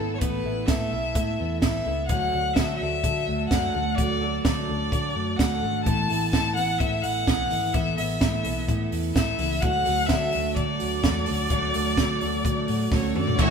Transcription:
Already playing: E4 A4
0.00 G#1 B3 E4
0.15 C#5
0.19 A1 A3 B3 E4 A4 B4, kick, closed hi-hat
0.44 A1 B3 E4 A4
0.67 A2 A3 B3 E4 A4 E5, kick, snare, closed hi-hat
0.91 B1 B3 E4 A4
1.14 A2 A3 B3 E4 A4, kick, closed hi-hat
1.40 E2 B3
1.60 A1 A3 B3 E4 E5, kick, snare, closed hi-hat
1.65 A4
1.85 C#2 B3 E4 A4
2.07 D2 D3 F#3 A3 F#4 F#5, kick, closed hi-hat
2.11 A4
2.33 D2 D4 F#4 A4
2.37 A3
2.54 D3 F#3 E5, kick, snare, closed hi-hat
2.59 A3 F#4 A4
2.77 D2 D4 E5
2.81 A3 F#4 A4
3.04 D3 F#3 A3 F#4 A4, kick, closed hi-hat
3.28 D2 A3
3.48 F#2 D3 F#3 D4 F#5, kick, snare, closed hi-hat
3.53 A3 F#4 A4
3.74 D2 A3 F#4 A4
3.96 D2 D3 D5, kick, closed hi-hat
4.00 F#3 A3 F#4 A4
4.21 A3 D4 F#4 A4
4.43 D3 F#3 A3 F#4 D5, kick, snare, closed hi-hat
4.48 A4
4.68 D2 A3 D4 F#4 A4
4.91 D3 F#3 A3 F#4 A4, kick, closed hi-hat
5.16 F#2 A3
5.36 D2 D3 F#3 A3 D4 F#4 A4 F#5, kick, snare, closed hi-hat
5.61 G#1 A3 F#4 A4
5.84 A1 E3 A3 B3 E4 A4 A5, kick, closed hi-hat
6.08 A1 B3 E4 A4, open hi-hat
6.32 A2 A3 B3 E4 A4 A5, kick, snare, closed hi-hat
6.54 A1 B3 E4 A4 F#5, open hi-hat
6.78 A2 A3 B3 E4 E5, kick, closed hi-hat
6.82 A4
7.02 A1 E3 F#5, open hi-hat
7.27 B1 A3 B3 E4 A4, kick, snare, closed hi-hat
7.50 G#1 E3 B3 E4 A4, open hi-hat
7.73 A1 E3 A3 B3 E4 A4 E5, kick, closed hi-hat
7.97 A1 E4 A4 E5, open hi-hat
8.01 B3
8.21 A2 A3 B3 E4 A4, kick, snare, closed hi-hat
8.44 B1 B3 E4 A4, open hi-hat
8.68 A2 A3 B3 E4 A4, kick, closed hi-hat
8.91 E2 E3, open hi-hat
9.15 A1 A3 B3 E4 A4 E5, kick, snare, closed hi-hat
9.39 C#2 E3 B3 E4 A4, open hi-hat
9.61 D2 D3 F#3 A3 F#4 F#5, kick, closed hi-hat
9.65 A4
9.85 D2 A3 F#4 A4, open hi-hat
10.07 D3 F#3 A3 D4 F#4 E5, kick, snare, closed hi-hat
10.11 A4
10.32 D2 A3 F#4 A4, open hi-hat
10.55 D3 F#3 A3 D4 F#4 A4 D5, kick, closed hi-hat
10.79 D2 F#3, open hi-hat
11.03 E2 D3 F#3 A3 F#4 A4, kick, snare, closed hi-hat
11.26 D2 F#3 F#4 A4, open hi-hat
11.30 A3
11.50 D2 D3 F#3 A3 F#4 A4, kick, closed hi-hat
11.73 D2 A3 F#4 A4, open hi-hat
11.97 D3 F#3 A3 D4 F#4 A4, kick, snare, closed hi-hat
12.20 D2 A3 F#4 A4, open hi-hat
12.45 D3 F#3 A3 D4 F#4 A4, kick, closed hi-hat
12.68 A2 F#3, open hi-hat
12.92 D2 D3 F#3 A3 C#4 F#4 A4 C#5, kick, snare
13.15 F#2 F#3 D4 F#4 A4 D5, mid tom
13.19 A3
13.27 floor tom
13.39 A1 A2 E3 F#3 A3 C#4 E4 F#4 C#5 E5, kick, crash

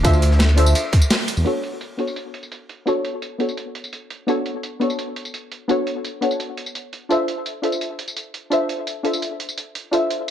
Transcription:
Already playing: D4 F4 A4 C5 E5
0.03 D2 D4 F4 A4 C5 E5, kick, closed hi-hat, ride, tambourine
0.13 tambourine
0.22 closed hi-hat, ride
0.31 snare
0.39 snare, closed hi-hat, ride, tambourine
0.49 tambourine
0.56 D4 F4 A4 C5 E5, closed hi-hat, ride
0.66 tambourine
0.75 closed hi-hat, ride, tambourine
0.92 kick, snare, closed hi-hat, ride
1.02 tambourine
1.10 snare, closed hi-hat, open hi-hat, tambourine
1.28 closed hi-hat, ride, tambourine
1.37 E2, tambourine
1.44 B3 D4 F#4 A4 C#5, closed hi-hat, tambourine
1.63 closed hi-hat
1.81 closed hi-hat, tambourine
1.97 B3 D4 F#4 A4 C#5, closed hi-hat
2.07 tambourine
2.16 closed hi-hat, tambourine
2.34 closed hi-hat
2.43 tambourine
2.52 closed hi-hat, tambourine
2.69 closed hi-hat
2.85 B3 D4 F#4 A4 C#5, closed hi-hat, tambourine
3.05 closed hi-hat
3.22 closed hi-hat, tambourine
3.38 B3 D4 F#4 A4 C#5, closed hi-hat
3.49 tambourine
3.57 closed hi-hat, tambourine
3.75 closed hi-hat
3.84 tambourine
3.93 closed hi-hat, tambourine
4.10 closed hi-hat
4.27 B3 D4 F#4 A4 C#5, closed hi-hat, tambourine
4.46 closed hi-hat
4.63 closed hi-hat, tambourine
4.80 B3 D4 F#4 A4 C#5, closed hi-hat
4.90 tambourine
4.99 closed hi-hat, tambourine
5.16 closed hi-hat
5.25 tambourine
5.34 closed hi-hat, tambourine
5.52 closed hi-hat
5.68 B3 D4 F#4 A4 C#5, closed hi-hat, tambourine
5.87 closed hi-hat
6.05 closed hi-hat, tambourine
6.21 B3 D4 F#4 A4 C#5, closed hi-hat
6.31 tambourine
6.40 closed hi-hat, tambourine
6.57 closed hi-hat
6.66 tambourine
6.75 closed hi-hat, tambourine
6.93 closed hi-hat
7.09 D4 F4 A4 C5 E5, closed hi-hat, tambourine
7.28 closed hi-hat
7.46 closed hi-hat, tambourine
7.62 D4 F4 A4 C5 E5, closed hi-hat
7.72 tambourine
7.81 closed hi-hat, tambourine
7.99 closed hi-hat
8.08 tambourine
8.17 closed hi-hat, tambourine
8.34 closed hi-hat
8.50 D4 F4 A4 C5 E5, closed hi-hat, tambourine
8.69 closed hi-hat
8.87 closed hi-hat, tambourine
9.03 D4 F4 A4 C5 E5, closed hi-hat
9.13 tambourine
9.22 closed hi-hat, tambourine
9.40 closed hi-hat
9.49 tambourine
9.58 closed hi-hat, tambourine
9.75 closed hi-hat
9.91 D4 F4 A4 C5 E5, closed hi-hat, tambourine
10.11 closed hi-hat

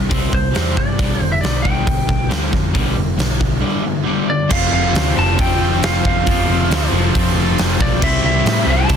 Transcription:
0.09 C2 C3 G3 C4, kick, open hi-hat
0.32 C2 C3 G3 C5, kick
0.54 E2 C3 G3 C4, snare, open hi-hat
0.76 G2 C3 G3 D5, kick, snare
0.99 B1 G2 D3 G3, kick, open hi-hat
1.20 F1 G2 D3 C5
1.32 E5
1.41 B1 G2 D3 D5, snare, open hi-hat
1.62 B1 G2 D3 G3 G5, kick
1.86 B1 G2 D3, kick, open hi-hat
2.07 B1 G2 D3, kick
2.29 D2 G2 D3 G3, snare, open hi-hat
2.51 F2 G2 D3, kick, snare
2.73 B1 G2 D3 G3, kick, open hi-hat
2.96 F1 G2 D3
3.17 B1 G2 D3, snare, open hi-hat
3.39 B1 G2 D3, kick
3.61 G2 D3 G3
3.84 G2 D3
4.06 G2 D3 G3
4.27 G2 D3 D5
4.49 F1 F2 C3 F3 A3 C4 F4 C5 F5 G5, kick, crash
4.71 F1 F5
4.93 D2, snare, open hi-hat
5.15 F1 F2 C3 F3 A5
5.36 F2 C3 F3 A3 C4 F4, kick, open hi-hat
5.41 G5
5.60 F1
5.82 F1 F5, snare, open hi-hat
6.05 F1 F5, kick
6.26 F1 F2 C3 F3 A3 C4 F4 A5, kick, open hi-hat
6.48 F1
6.70 D2, snare, open hi-hat
6.91 F1 C3 F3
6.96 F2
7.13 F2 C3 F3 A3 C4 F4, kick, open hi-hat
7.36 F1
7.58 F1, snare, open hi-hat
7.81 B1 D5, kick
8.01 C2 C3 E3 G3 C4 E4 G4 D5 E5, kick, crash
8.23 C2 E5
8.45 A2, snare, open hi-hat
8.66 C2 C3 G3 C4
8.70 A5
8.88 C3 E3 G3 C4 E4, kick, open hi-hat

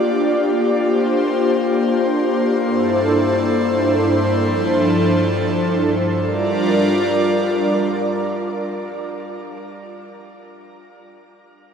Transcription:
Already playing: A#3 D4 F4 G4 D5
0.81 C5
2.61 G2 D4 E4 A4
4.41 F3 A4
6.22 G3 D4 F4 A#4 D5

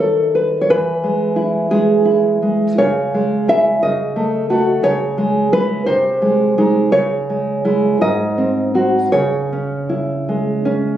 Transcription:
Already playing: D#3 B4 C#5
0.00 A4
0.35 B4
0.61 C#5
0.70 E3 B4
1.03 G#3
1.36 E4
1.71 G#3 G#4
2.05 E4
2.42 G#3
2.78 C#3 C#5
3.14 G#3
3.48 G#3 E4 E5
3.83 C#3 D#5
4.16 A3
4.50 A3 F#4
4.83 C#3 C#5
5.18 G#3
5.52 G#3 E4 B4
5.86 C3 C5
6.22 G#3
6.58 G#3 D#4
6.92 C#3 C#5
7.30 G#3
7.65 G#3 E4
8.01 G#2 D#5
8.38 C4
8.74 C4 F#4
9.12 C#3 C#5
9.53 C#4
9.89 E4
10.29 G#3
10.65 C#4

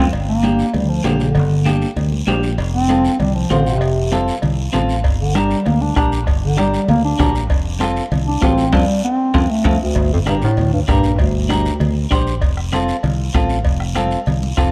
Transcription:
0.12 G1, cowbell, long guiro
0.28 A#3
0.43 A#3 D4 G4, cowbell, high conga, short guiro
0.59 short guiro
0.74 D2 G3, cowbell, low conga, long guiro
0.89 F3
1.04 A#1 D3 A#3 D4 G4, cowbell, high conga, low timbale, short guiro
1.19 D3, short guiro
1.35 G1, cowbell, low conga, long guiro
1.65 A#3 D4 G4, cowbell, high conga, short guiro
1.82 short guiro
1.96 D2, cowbell, low conga, long guiro
2.12 high conga
2.27 A#1 A#3 D4 G4, cowbell, high conga, low timbale, short guiro
2.43 short guiro
2.58 F1, cowbell, long guiro
2.73 C4
2.89 C4 F4 A4, cowbell, high conga, short guiro
3.05 short guiro
3.20 C2 G3, cowbell, low conga, long guiro
3.35 F3
3.50 A1 D3 C4 F4 C5, cowbell, high conga, low timbale, short guiro
3.65 C3, short guiro
3.80 F1, cowbell, long guiro
4.12 C4 F4 A4, cowbell, high conga, short guiro
4.28 short guiro
4.42 C2, cowbell, low conga, long guiro
4.73 A1 C4 F4 A4, cowbell, high conga, low conga, short guiro
4.89 short guiro
5.04 G1, bombo low, cowbell, long guiro
5.21 D3
5.35 G3 D4 G4 A#4, bombo rim, cowbell, high conga, short guiro
5.51 short guiro
5.66 D2 A#3, cowbell, low conga, long guiro
5.81 D4, high conga
5.96 A#1 D4 G4 A#4, bombo low, bombo rim, cowbell, high conga, short guiro
6.12 short guiro
6.27 G1, bombo low, cowbell, long guiro
6.43 D3
6.57 G3 D4 G4 A#4, bombo rim, cowbell, high conga, short guiro
6.74 short guiro
6.88 D2 A#3, cowbell, low conga, long guiro
7.04 D4
7.19 A#1 D4 G4 A#4, bombo low, bombo rim, cowbell, high conga, low conga, low timbale, short guiro
7.35 short guiro
7.50 F1, bombo low, cowbell, long guiro
7.80 C4 F4 A4, bombo rim, cowbell, high conga, short guiro
7.96 short guiro
8.12 C2, cowbell, low conga, long guiro
8.28 D4
8.41 A1 C4 F4 A4, bombo low, bombo rim, cowbell, high conga, low timbale, short guiro
8.58 short guiro
8.73 F2 G3 C4 F4 A4, bombo low, high conga, high timbale, long guiro
9.05 C4
9.34 F2 C4 F4 A4, bombo low, high conga, high timbale, long guiro
9.50 A3
9.64 F2 C4 F4 A4, bombo low, high conga, high timbale, long guiro
9.83 D2
9.95 G1, bombo low, cowbell, long guiro
10.13 F2
10.26 G2 D4 G4 A#4, bombo rim, cowbell, high conga, short guiro
10.42 A2, short guiro
10.57 D2, cowbell, low conga, long guiro
10.73 G2
10.88 A#1 G2 D4 G4 A#4, bombo low, bombo rim, cowbell, high conga, short guiro
11.03 short guiro
11.19 G1 D2, bombo low, cowbell, long guiro
11.49 D4 G4 A#4, bombo rim, cowbell, high conga, short guiro
11.65 short guiro
11.80 D2, cowbell, low conga, long guiro
12.11 A#1 D4 G4 C5, bombo low, bombo rim, cowbell, high conga, short guiro
12.27 short guiro
12.42 F1, bombo low, cowbell, long guiro
12.57 bombo rim
12.72 C4 F4 A4, bombo rim, cowbell, high conga, short guiro
12.88 short guiro
13.03 C2, cowbell, low conga, long guiro
13.34 A1 C4 F4 A4, bombo low, bombo rim, cowbell, high conga, short guiro
13.49 short guiro
13.65 F1, bombo low, cowbell, long guiro
13.80 bombo rim
13.95 C4 F4 A4, bombo rim, cowbell, high conga, short guiro
14.11 short guiro
14.26 C2, cowbell, low conga, long guiro
14.43 high conga
14.57 F1 C4 F4 A4, bombo low, bombo rim, cowbell, short guiro

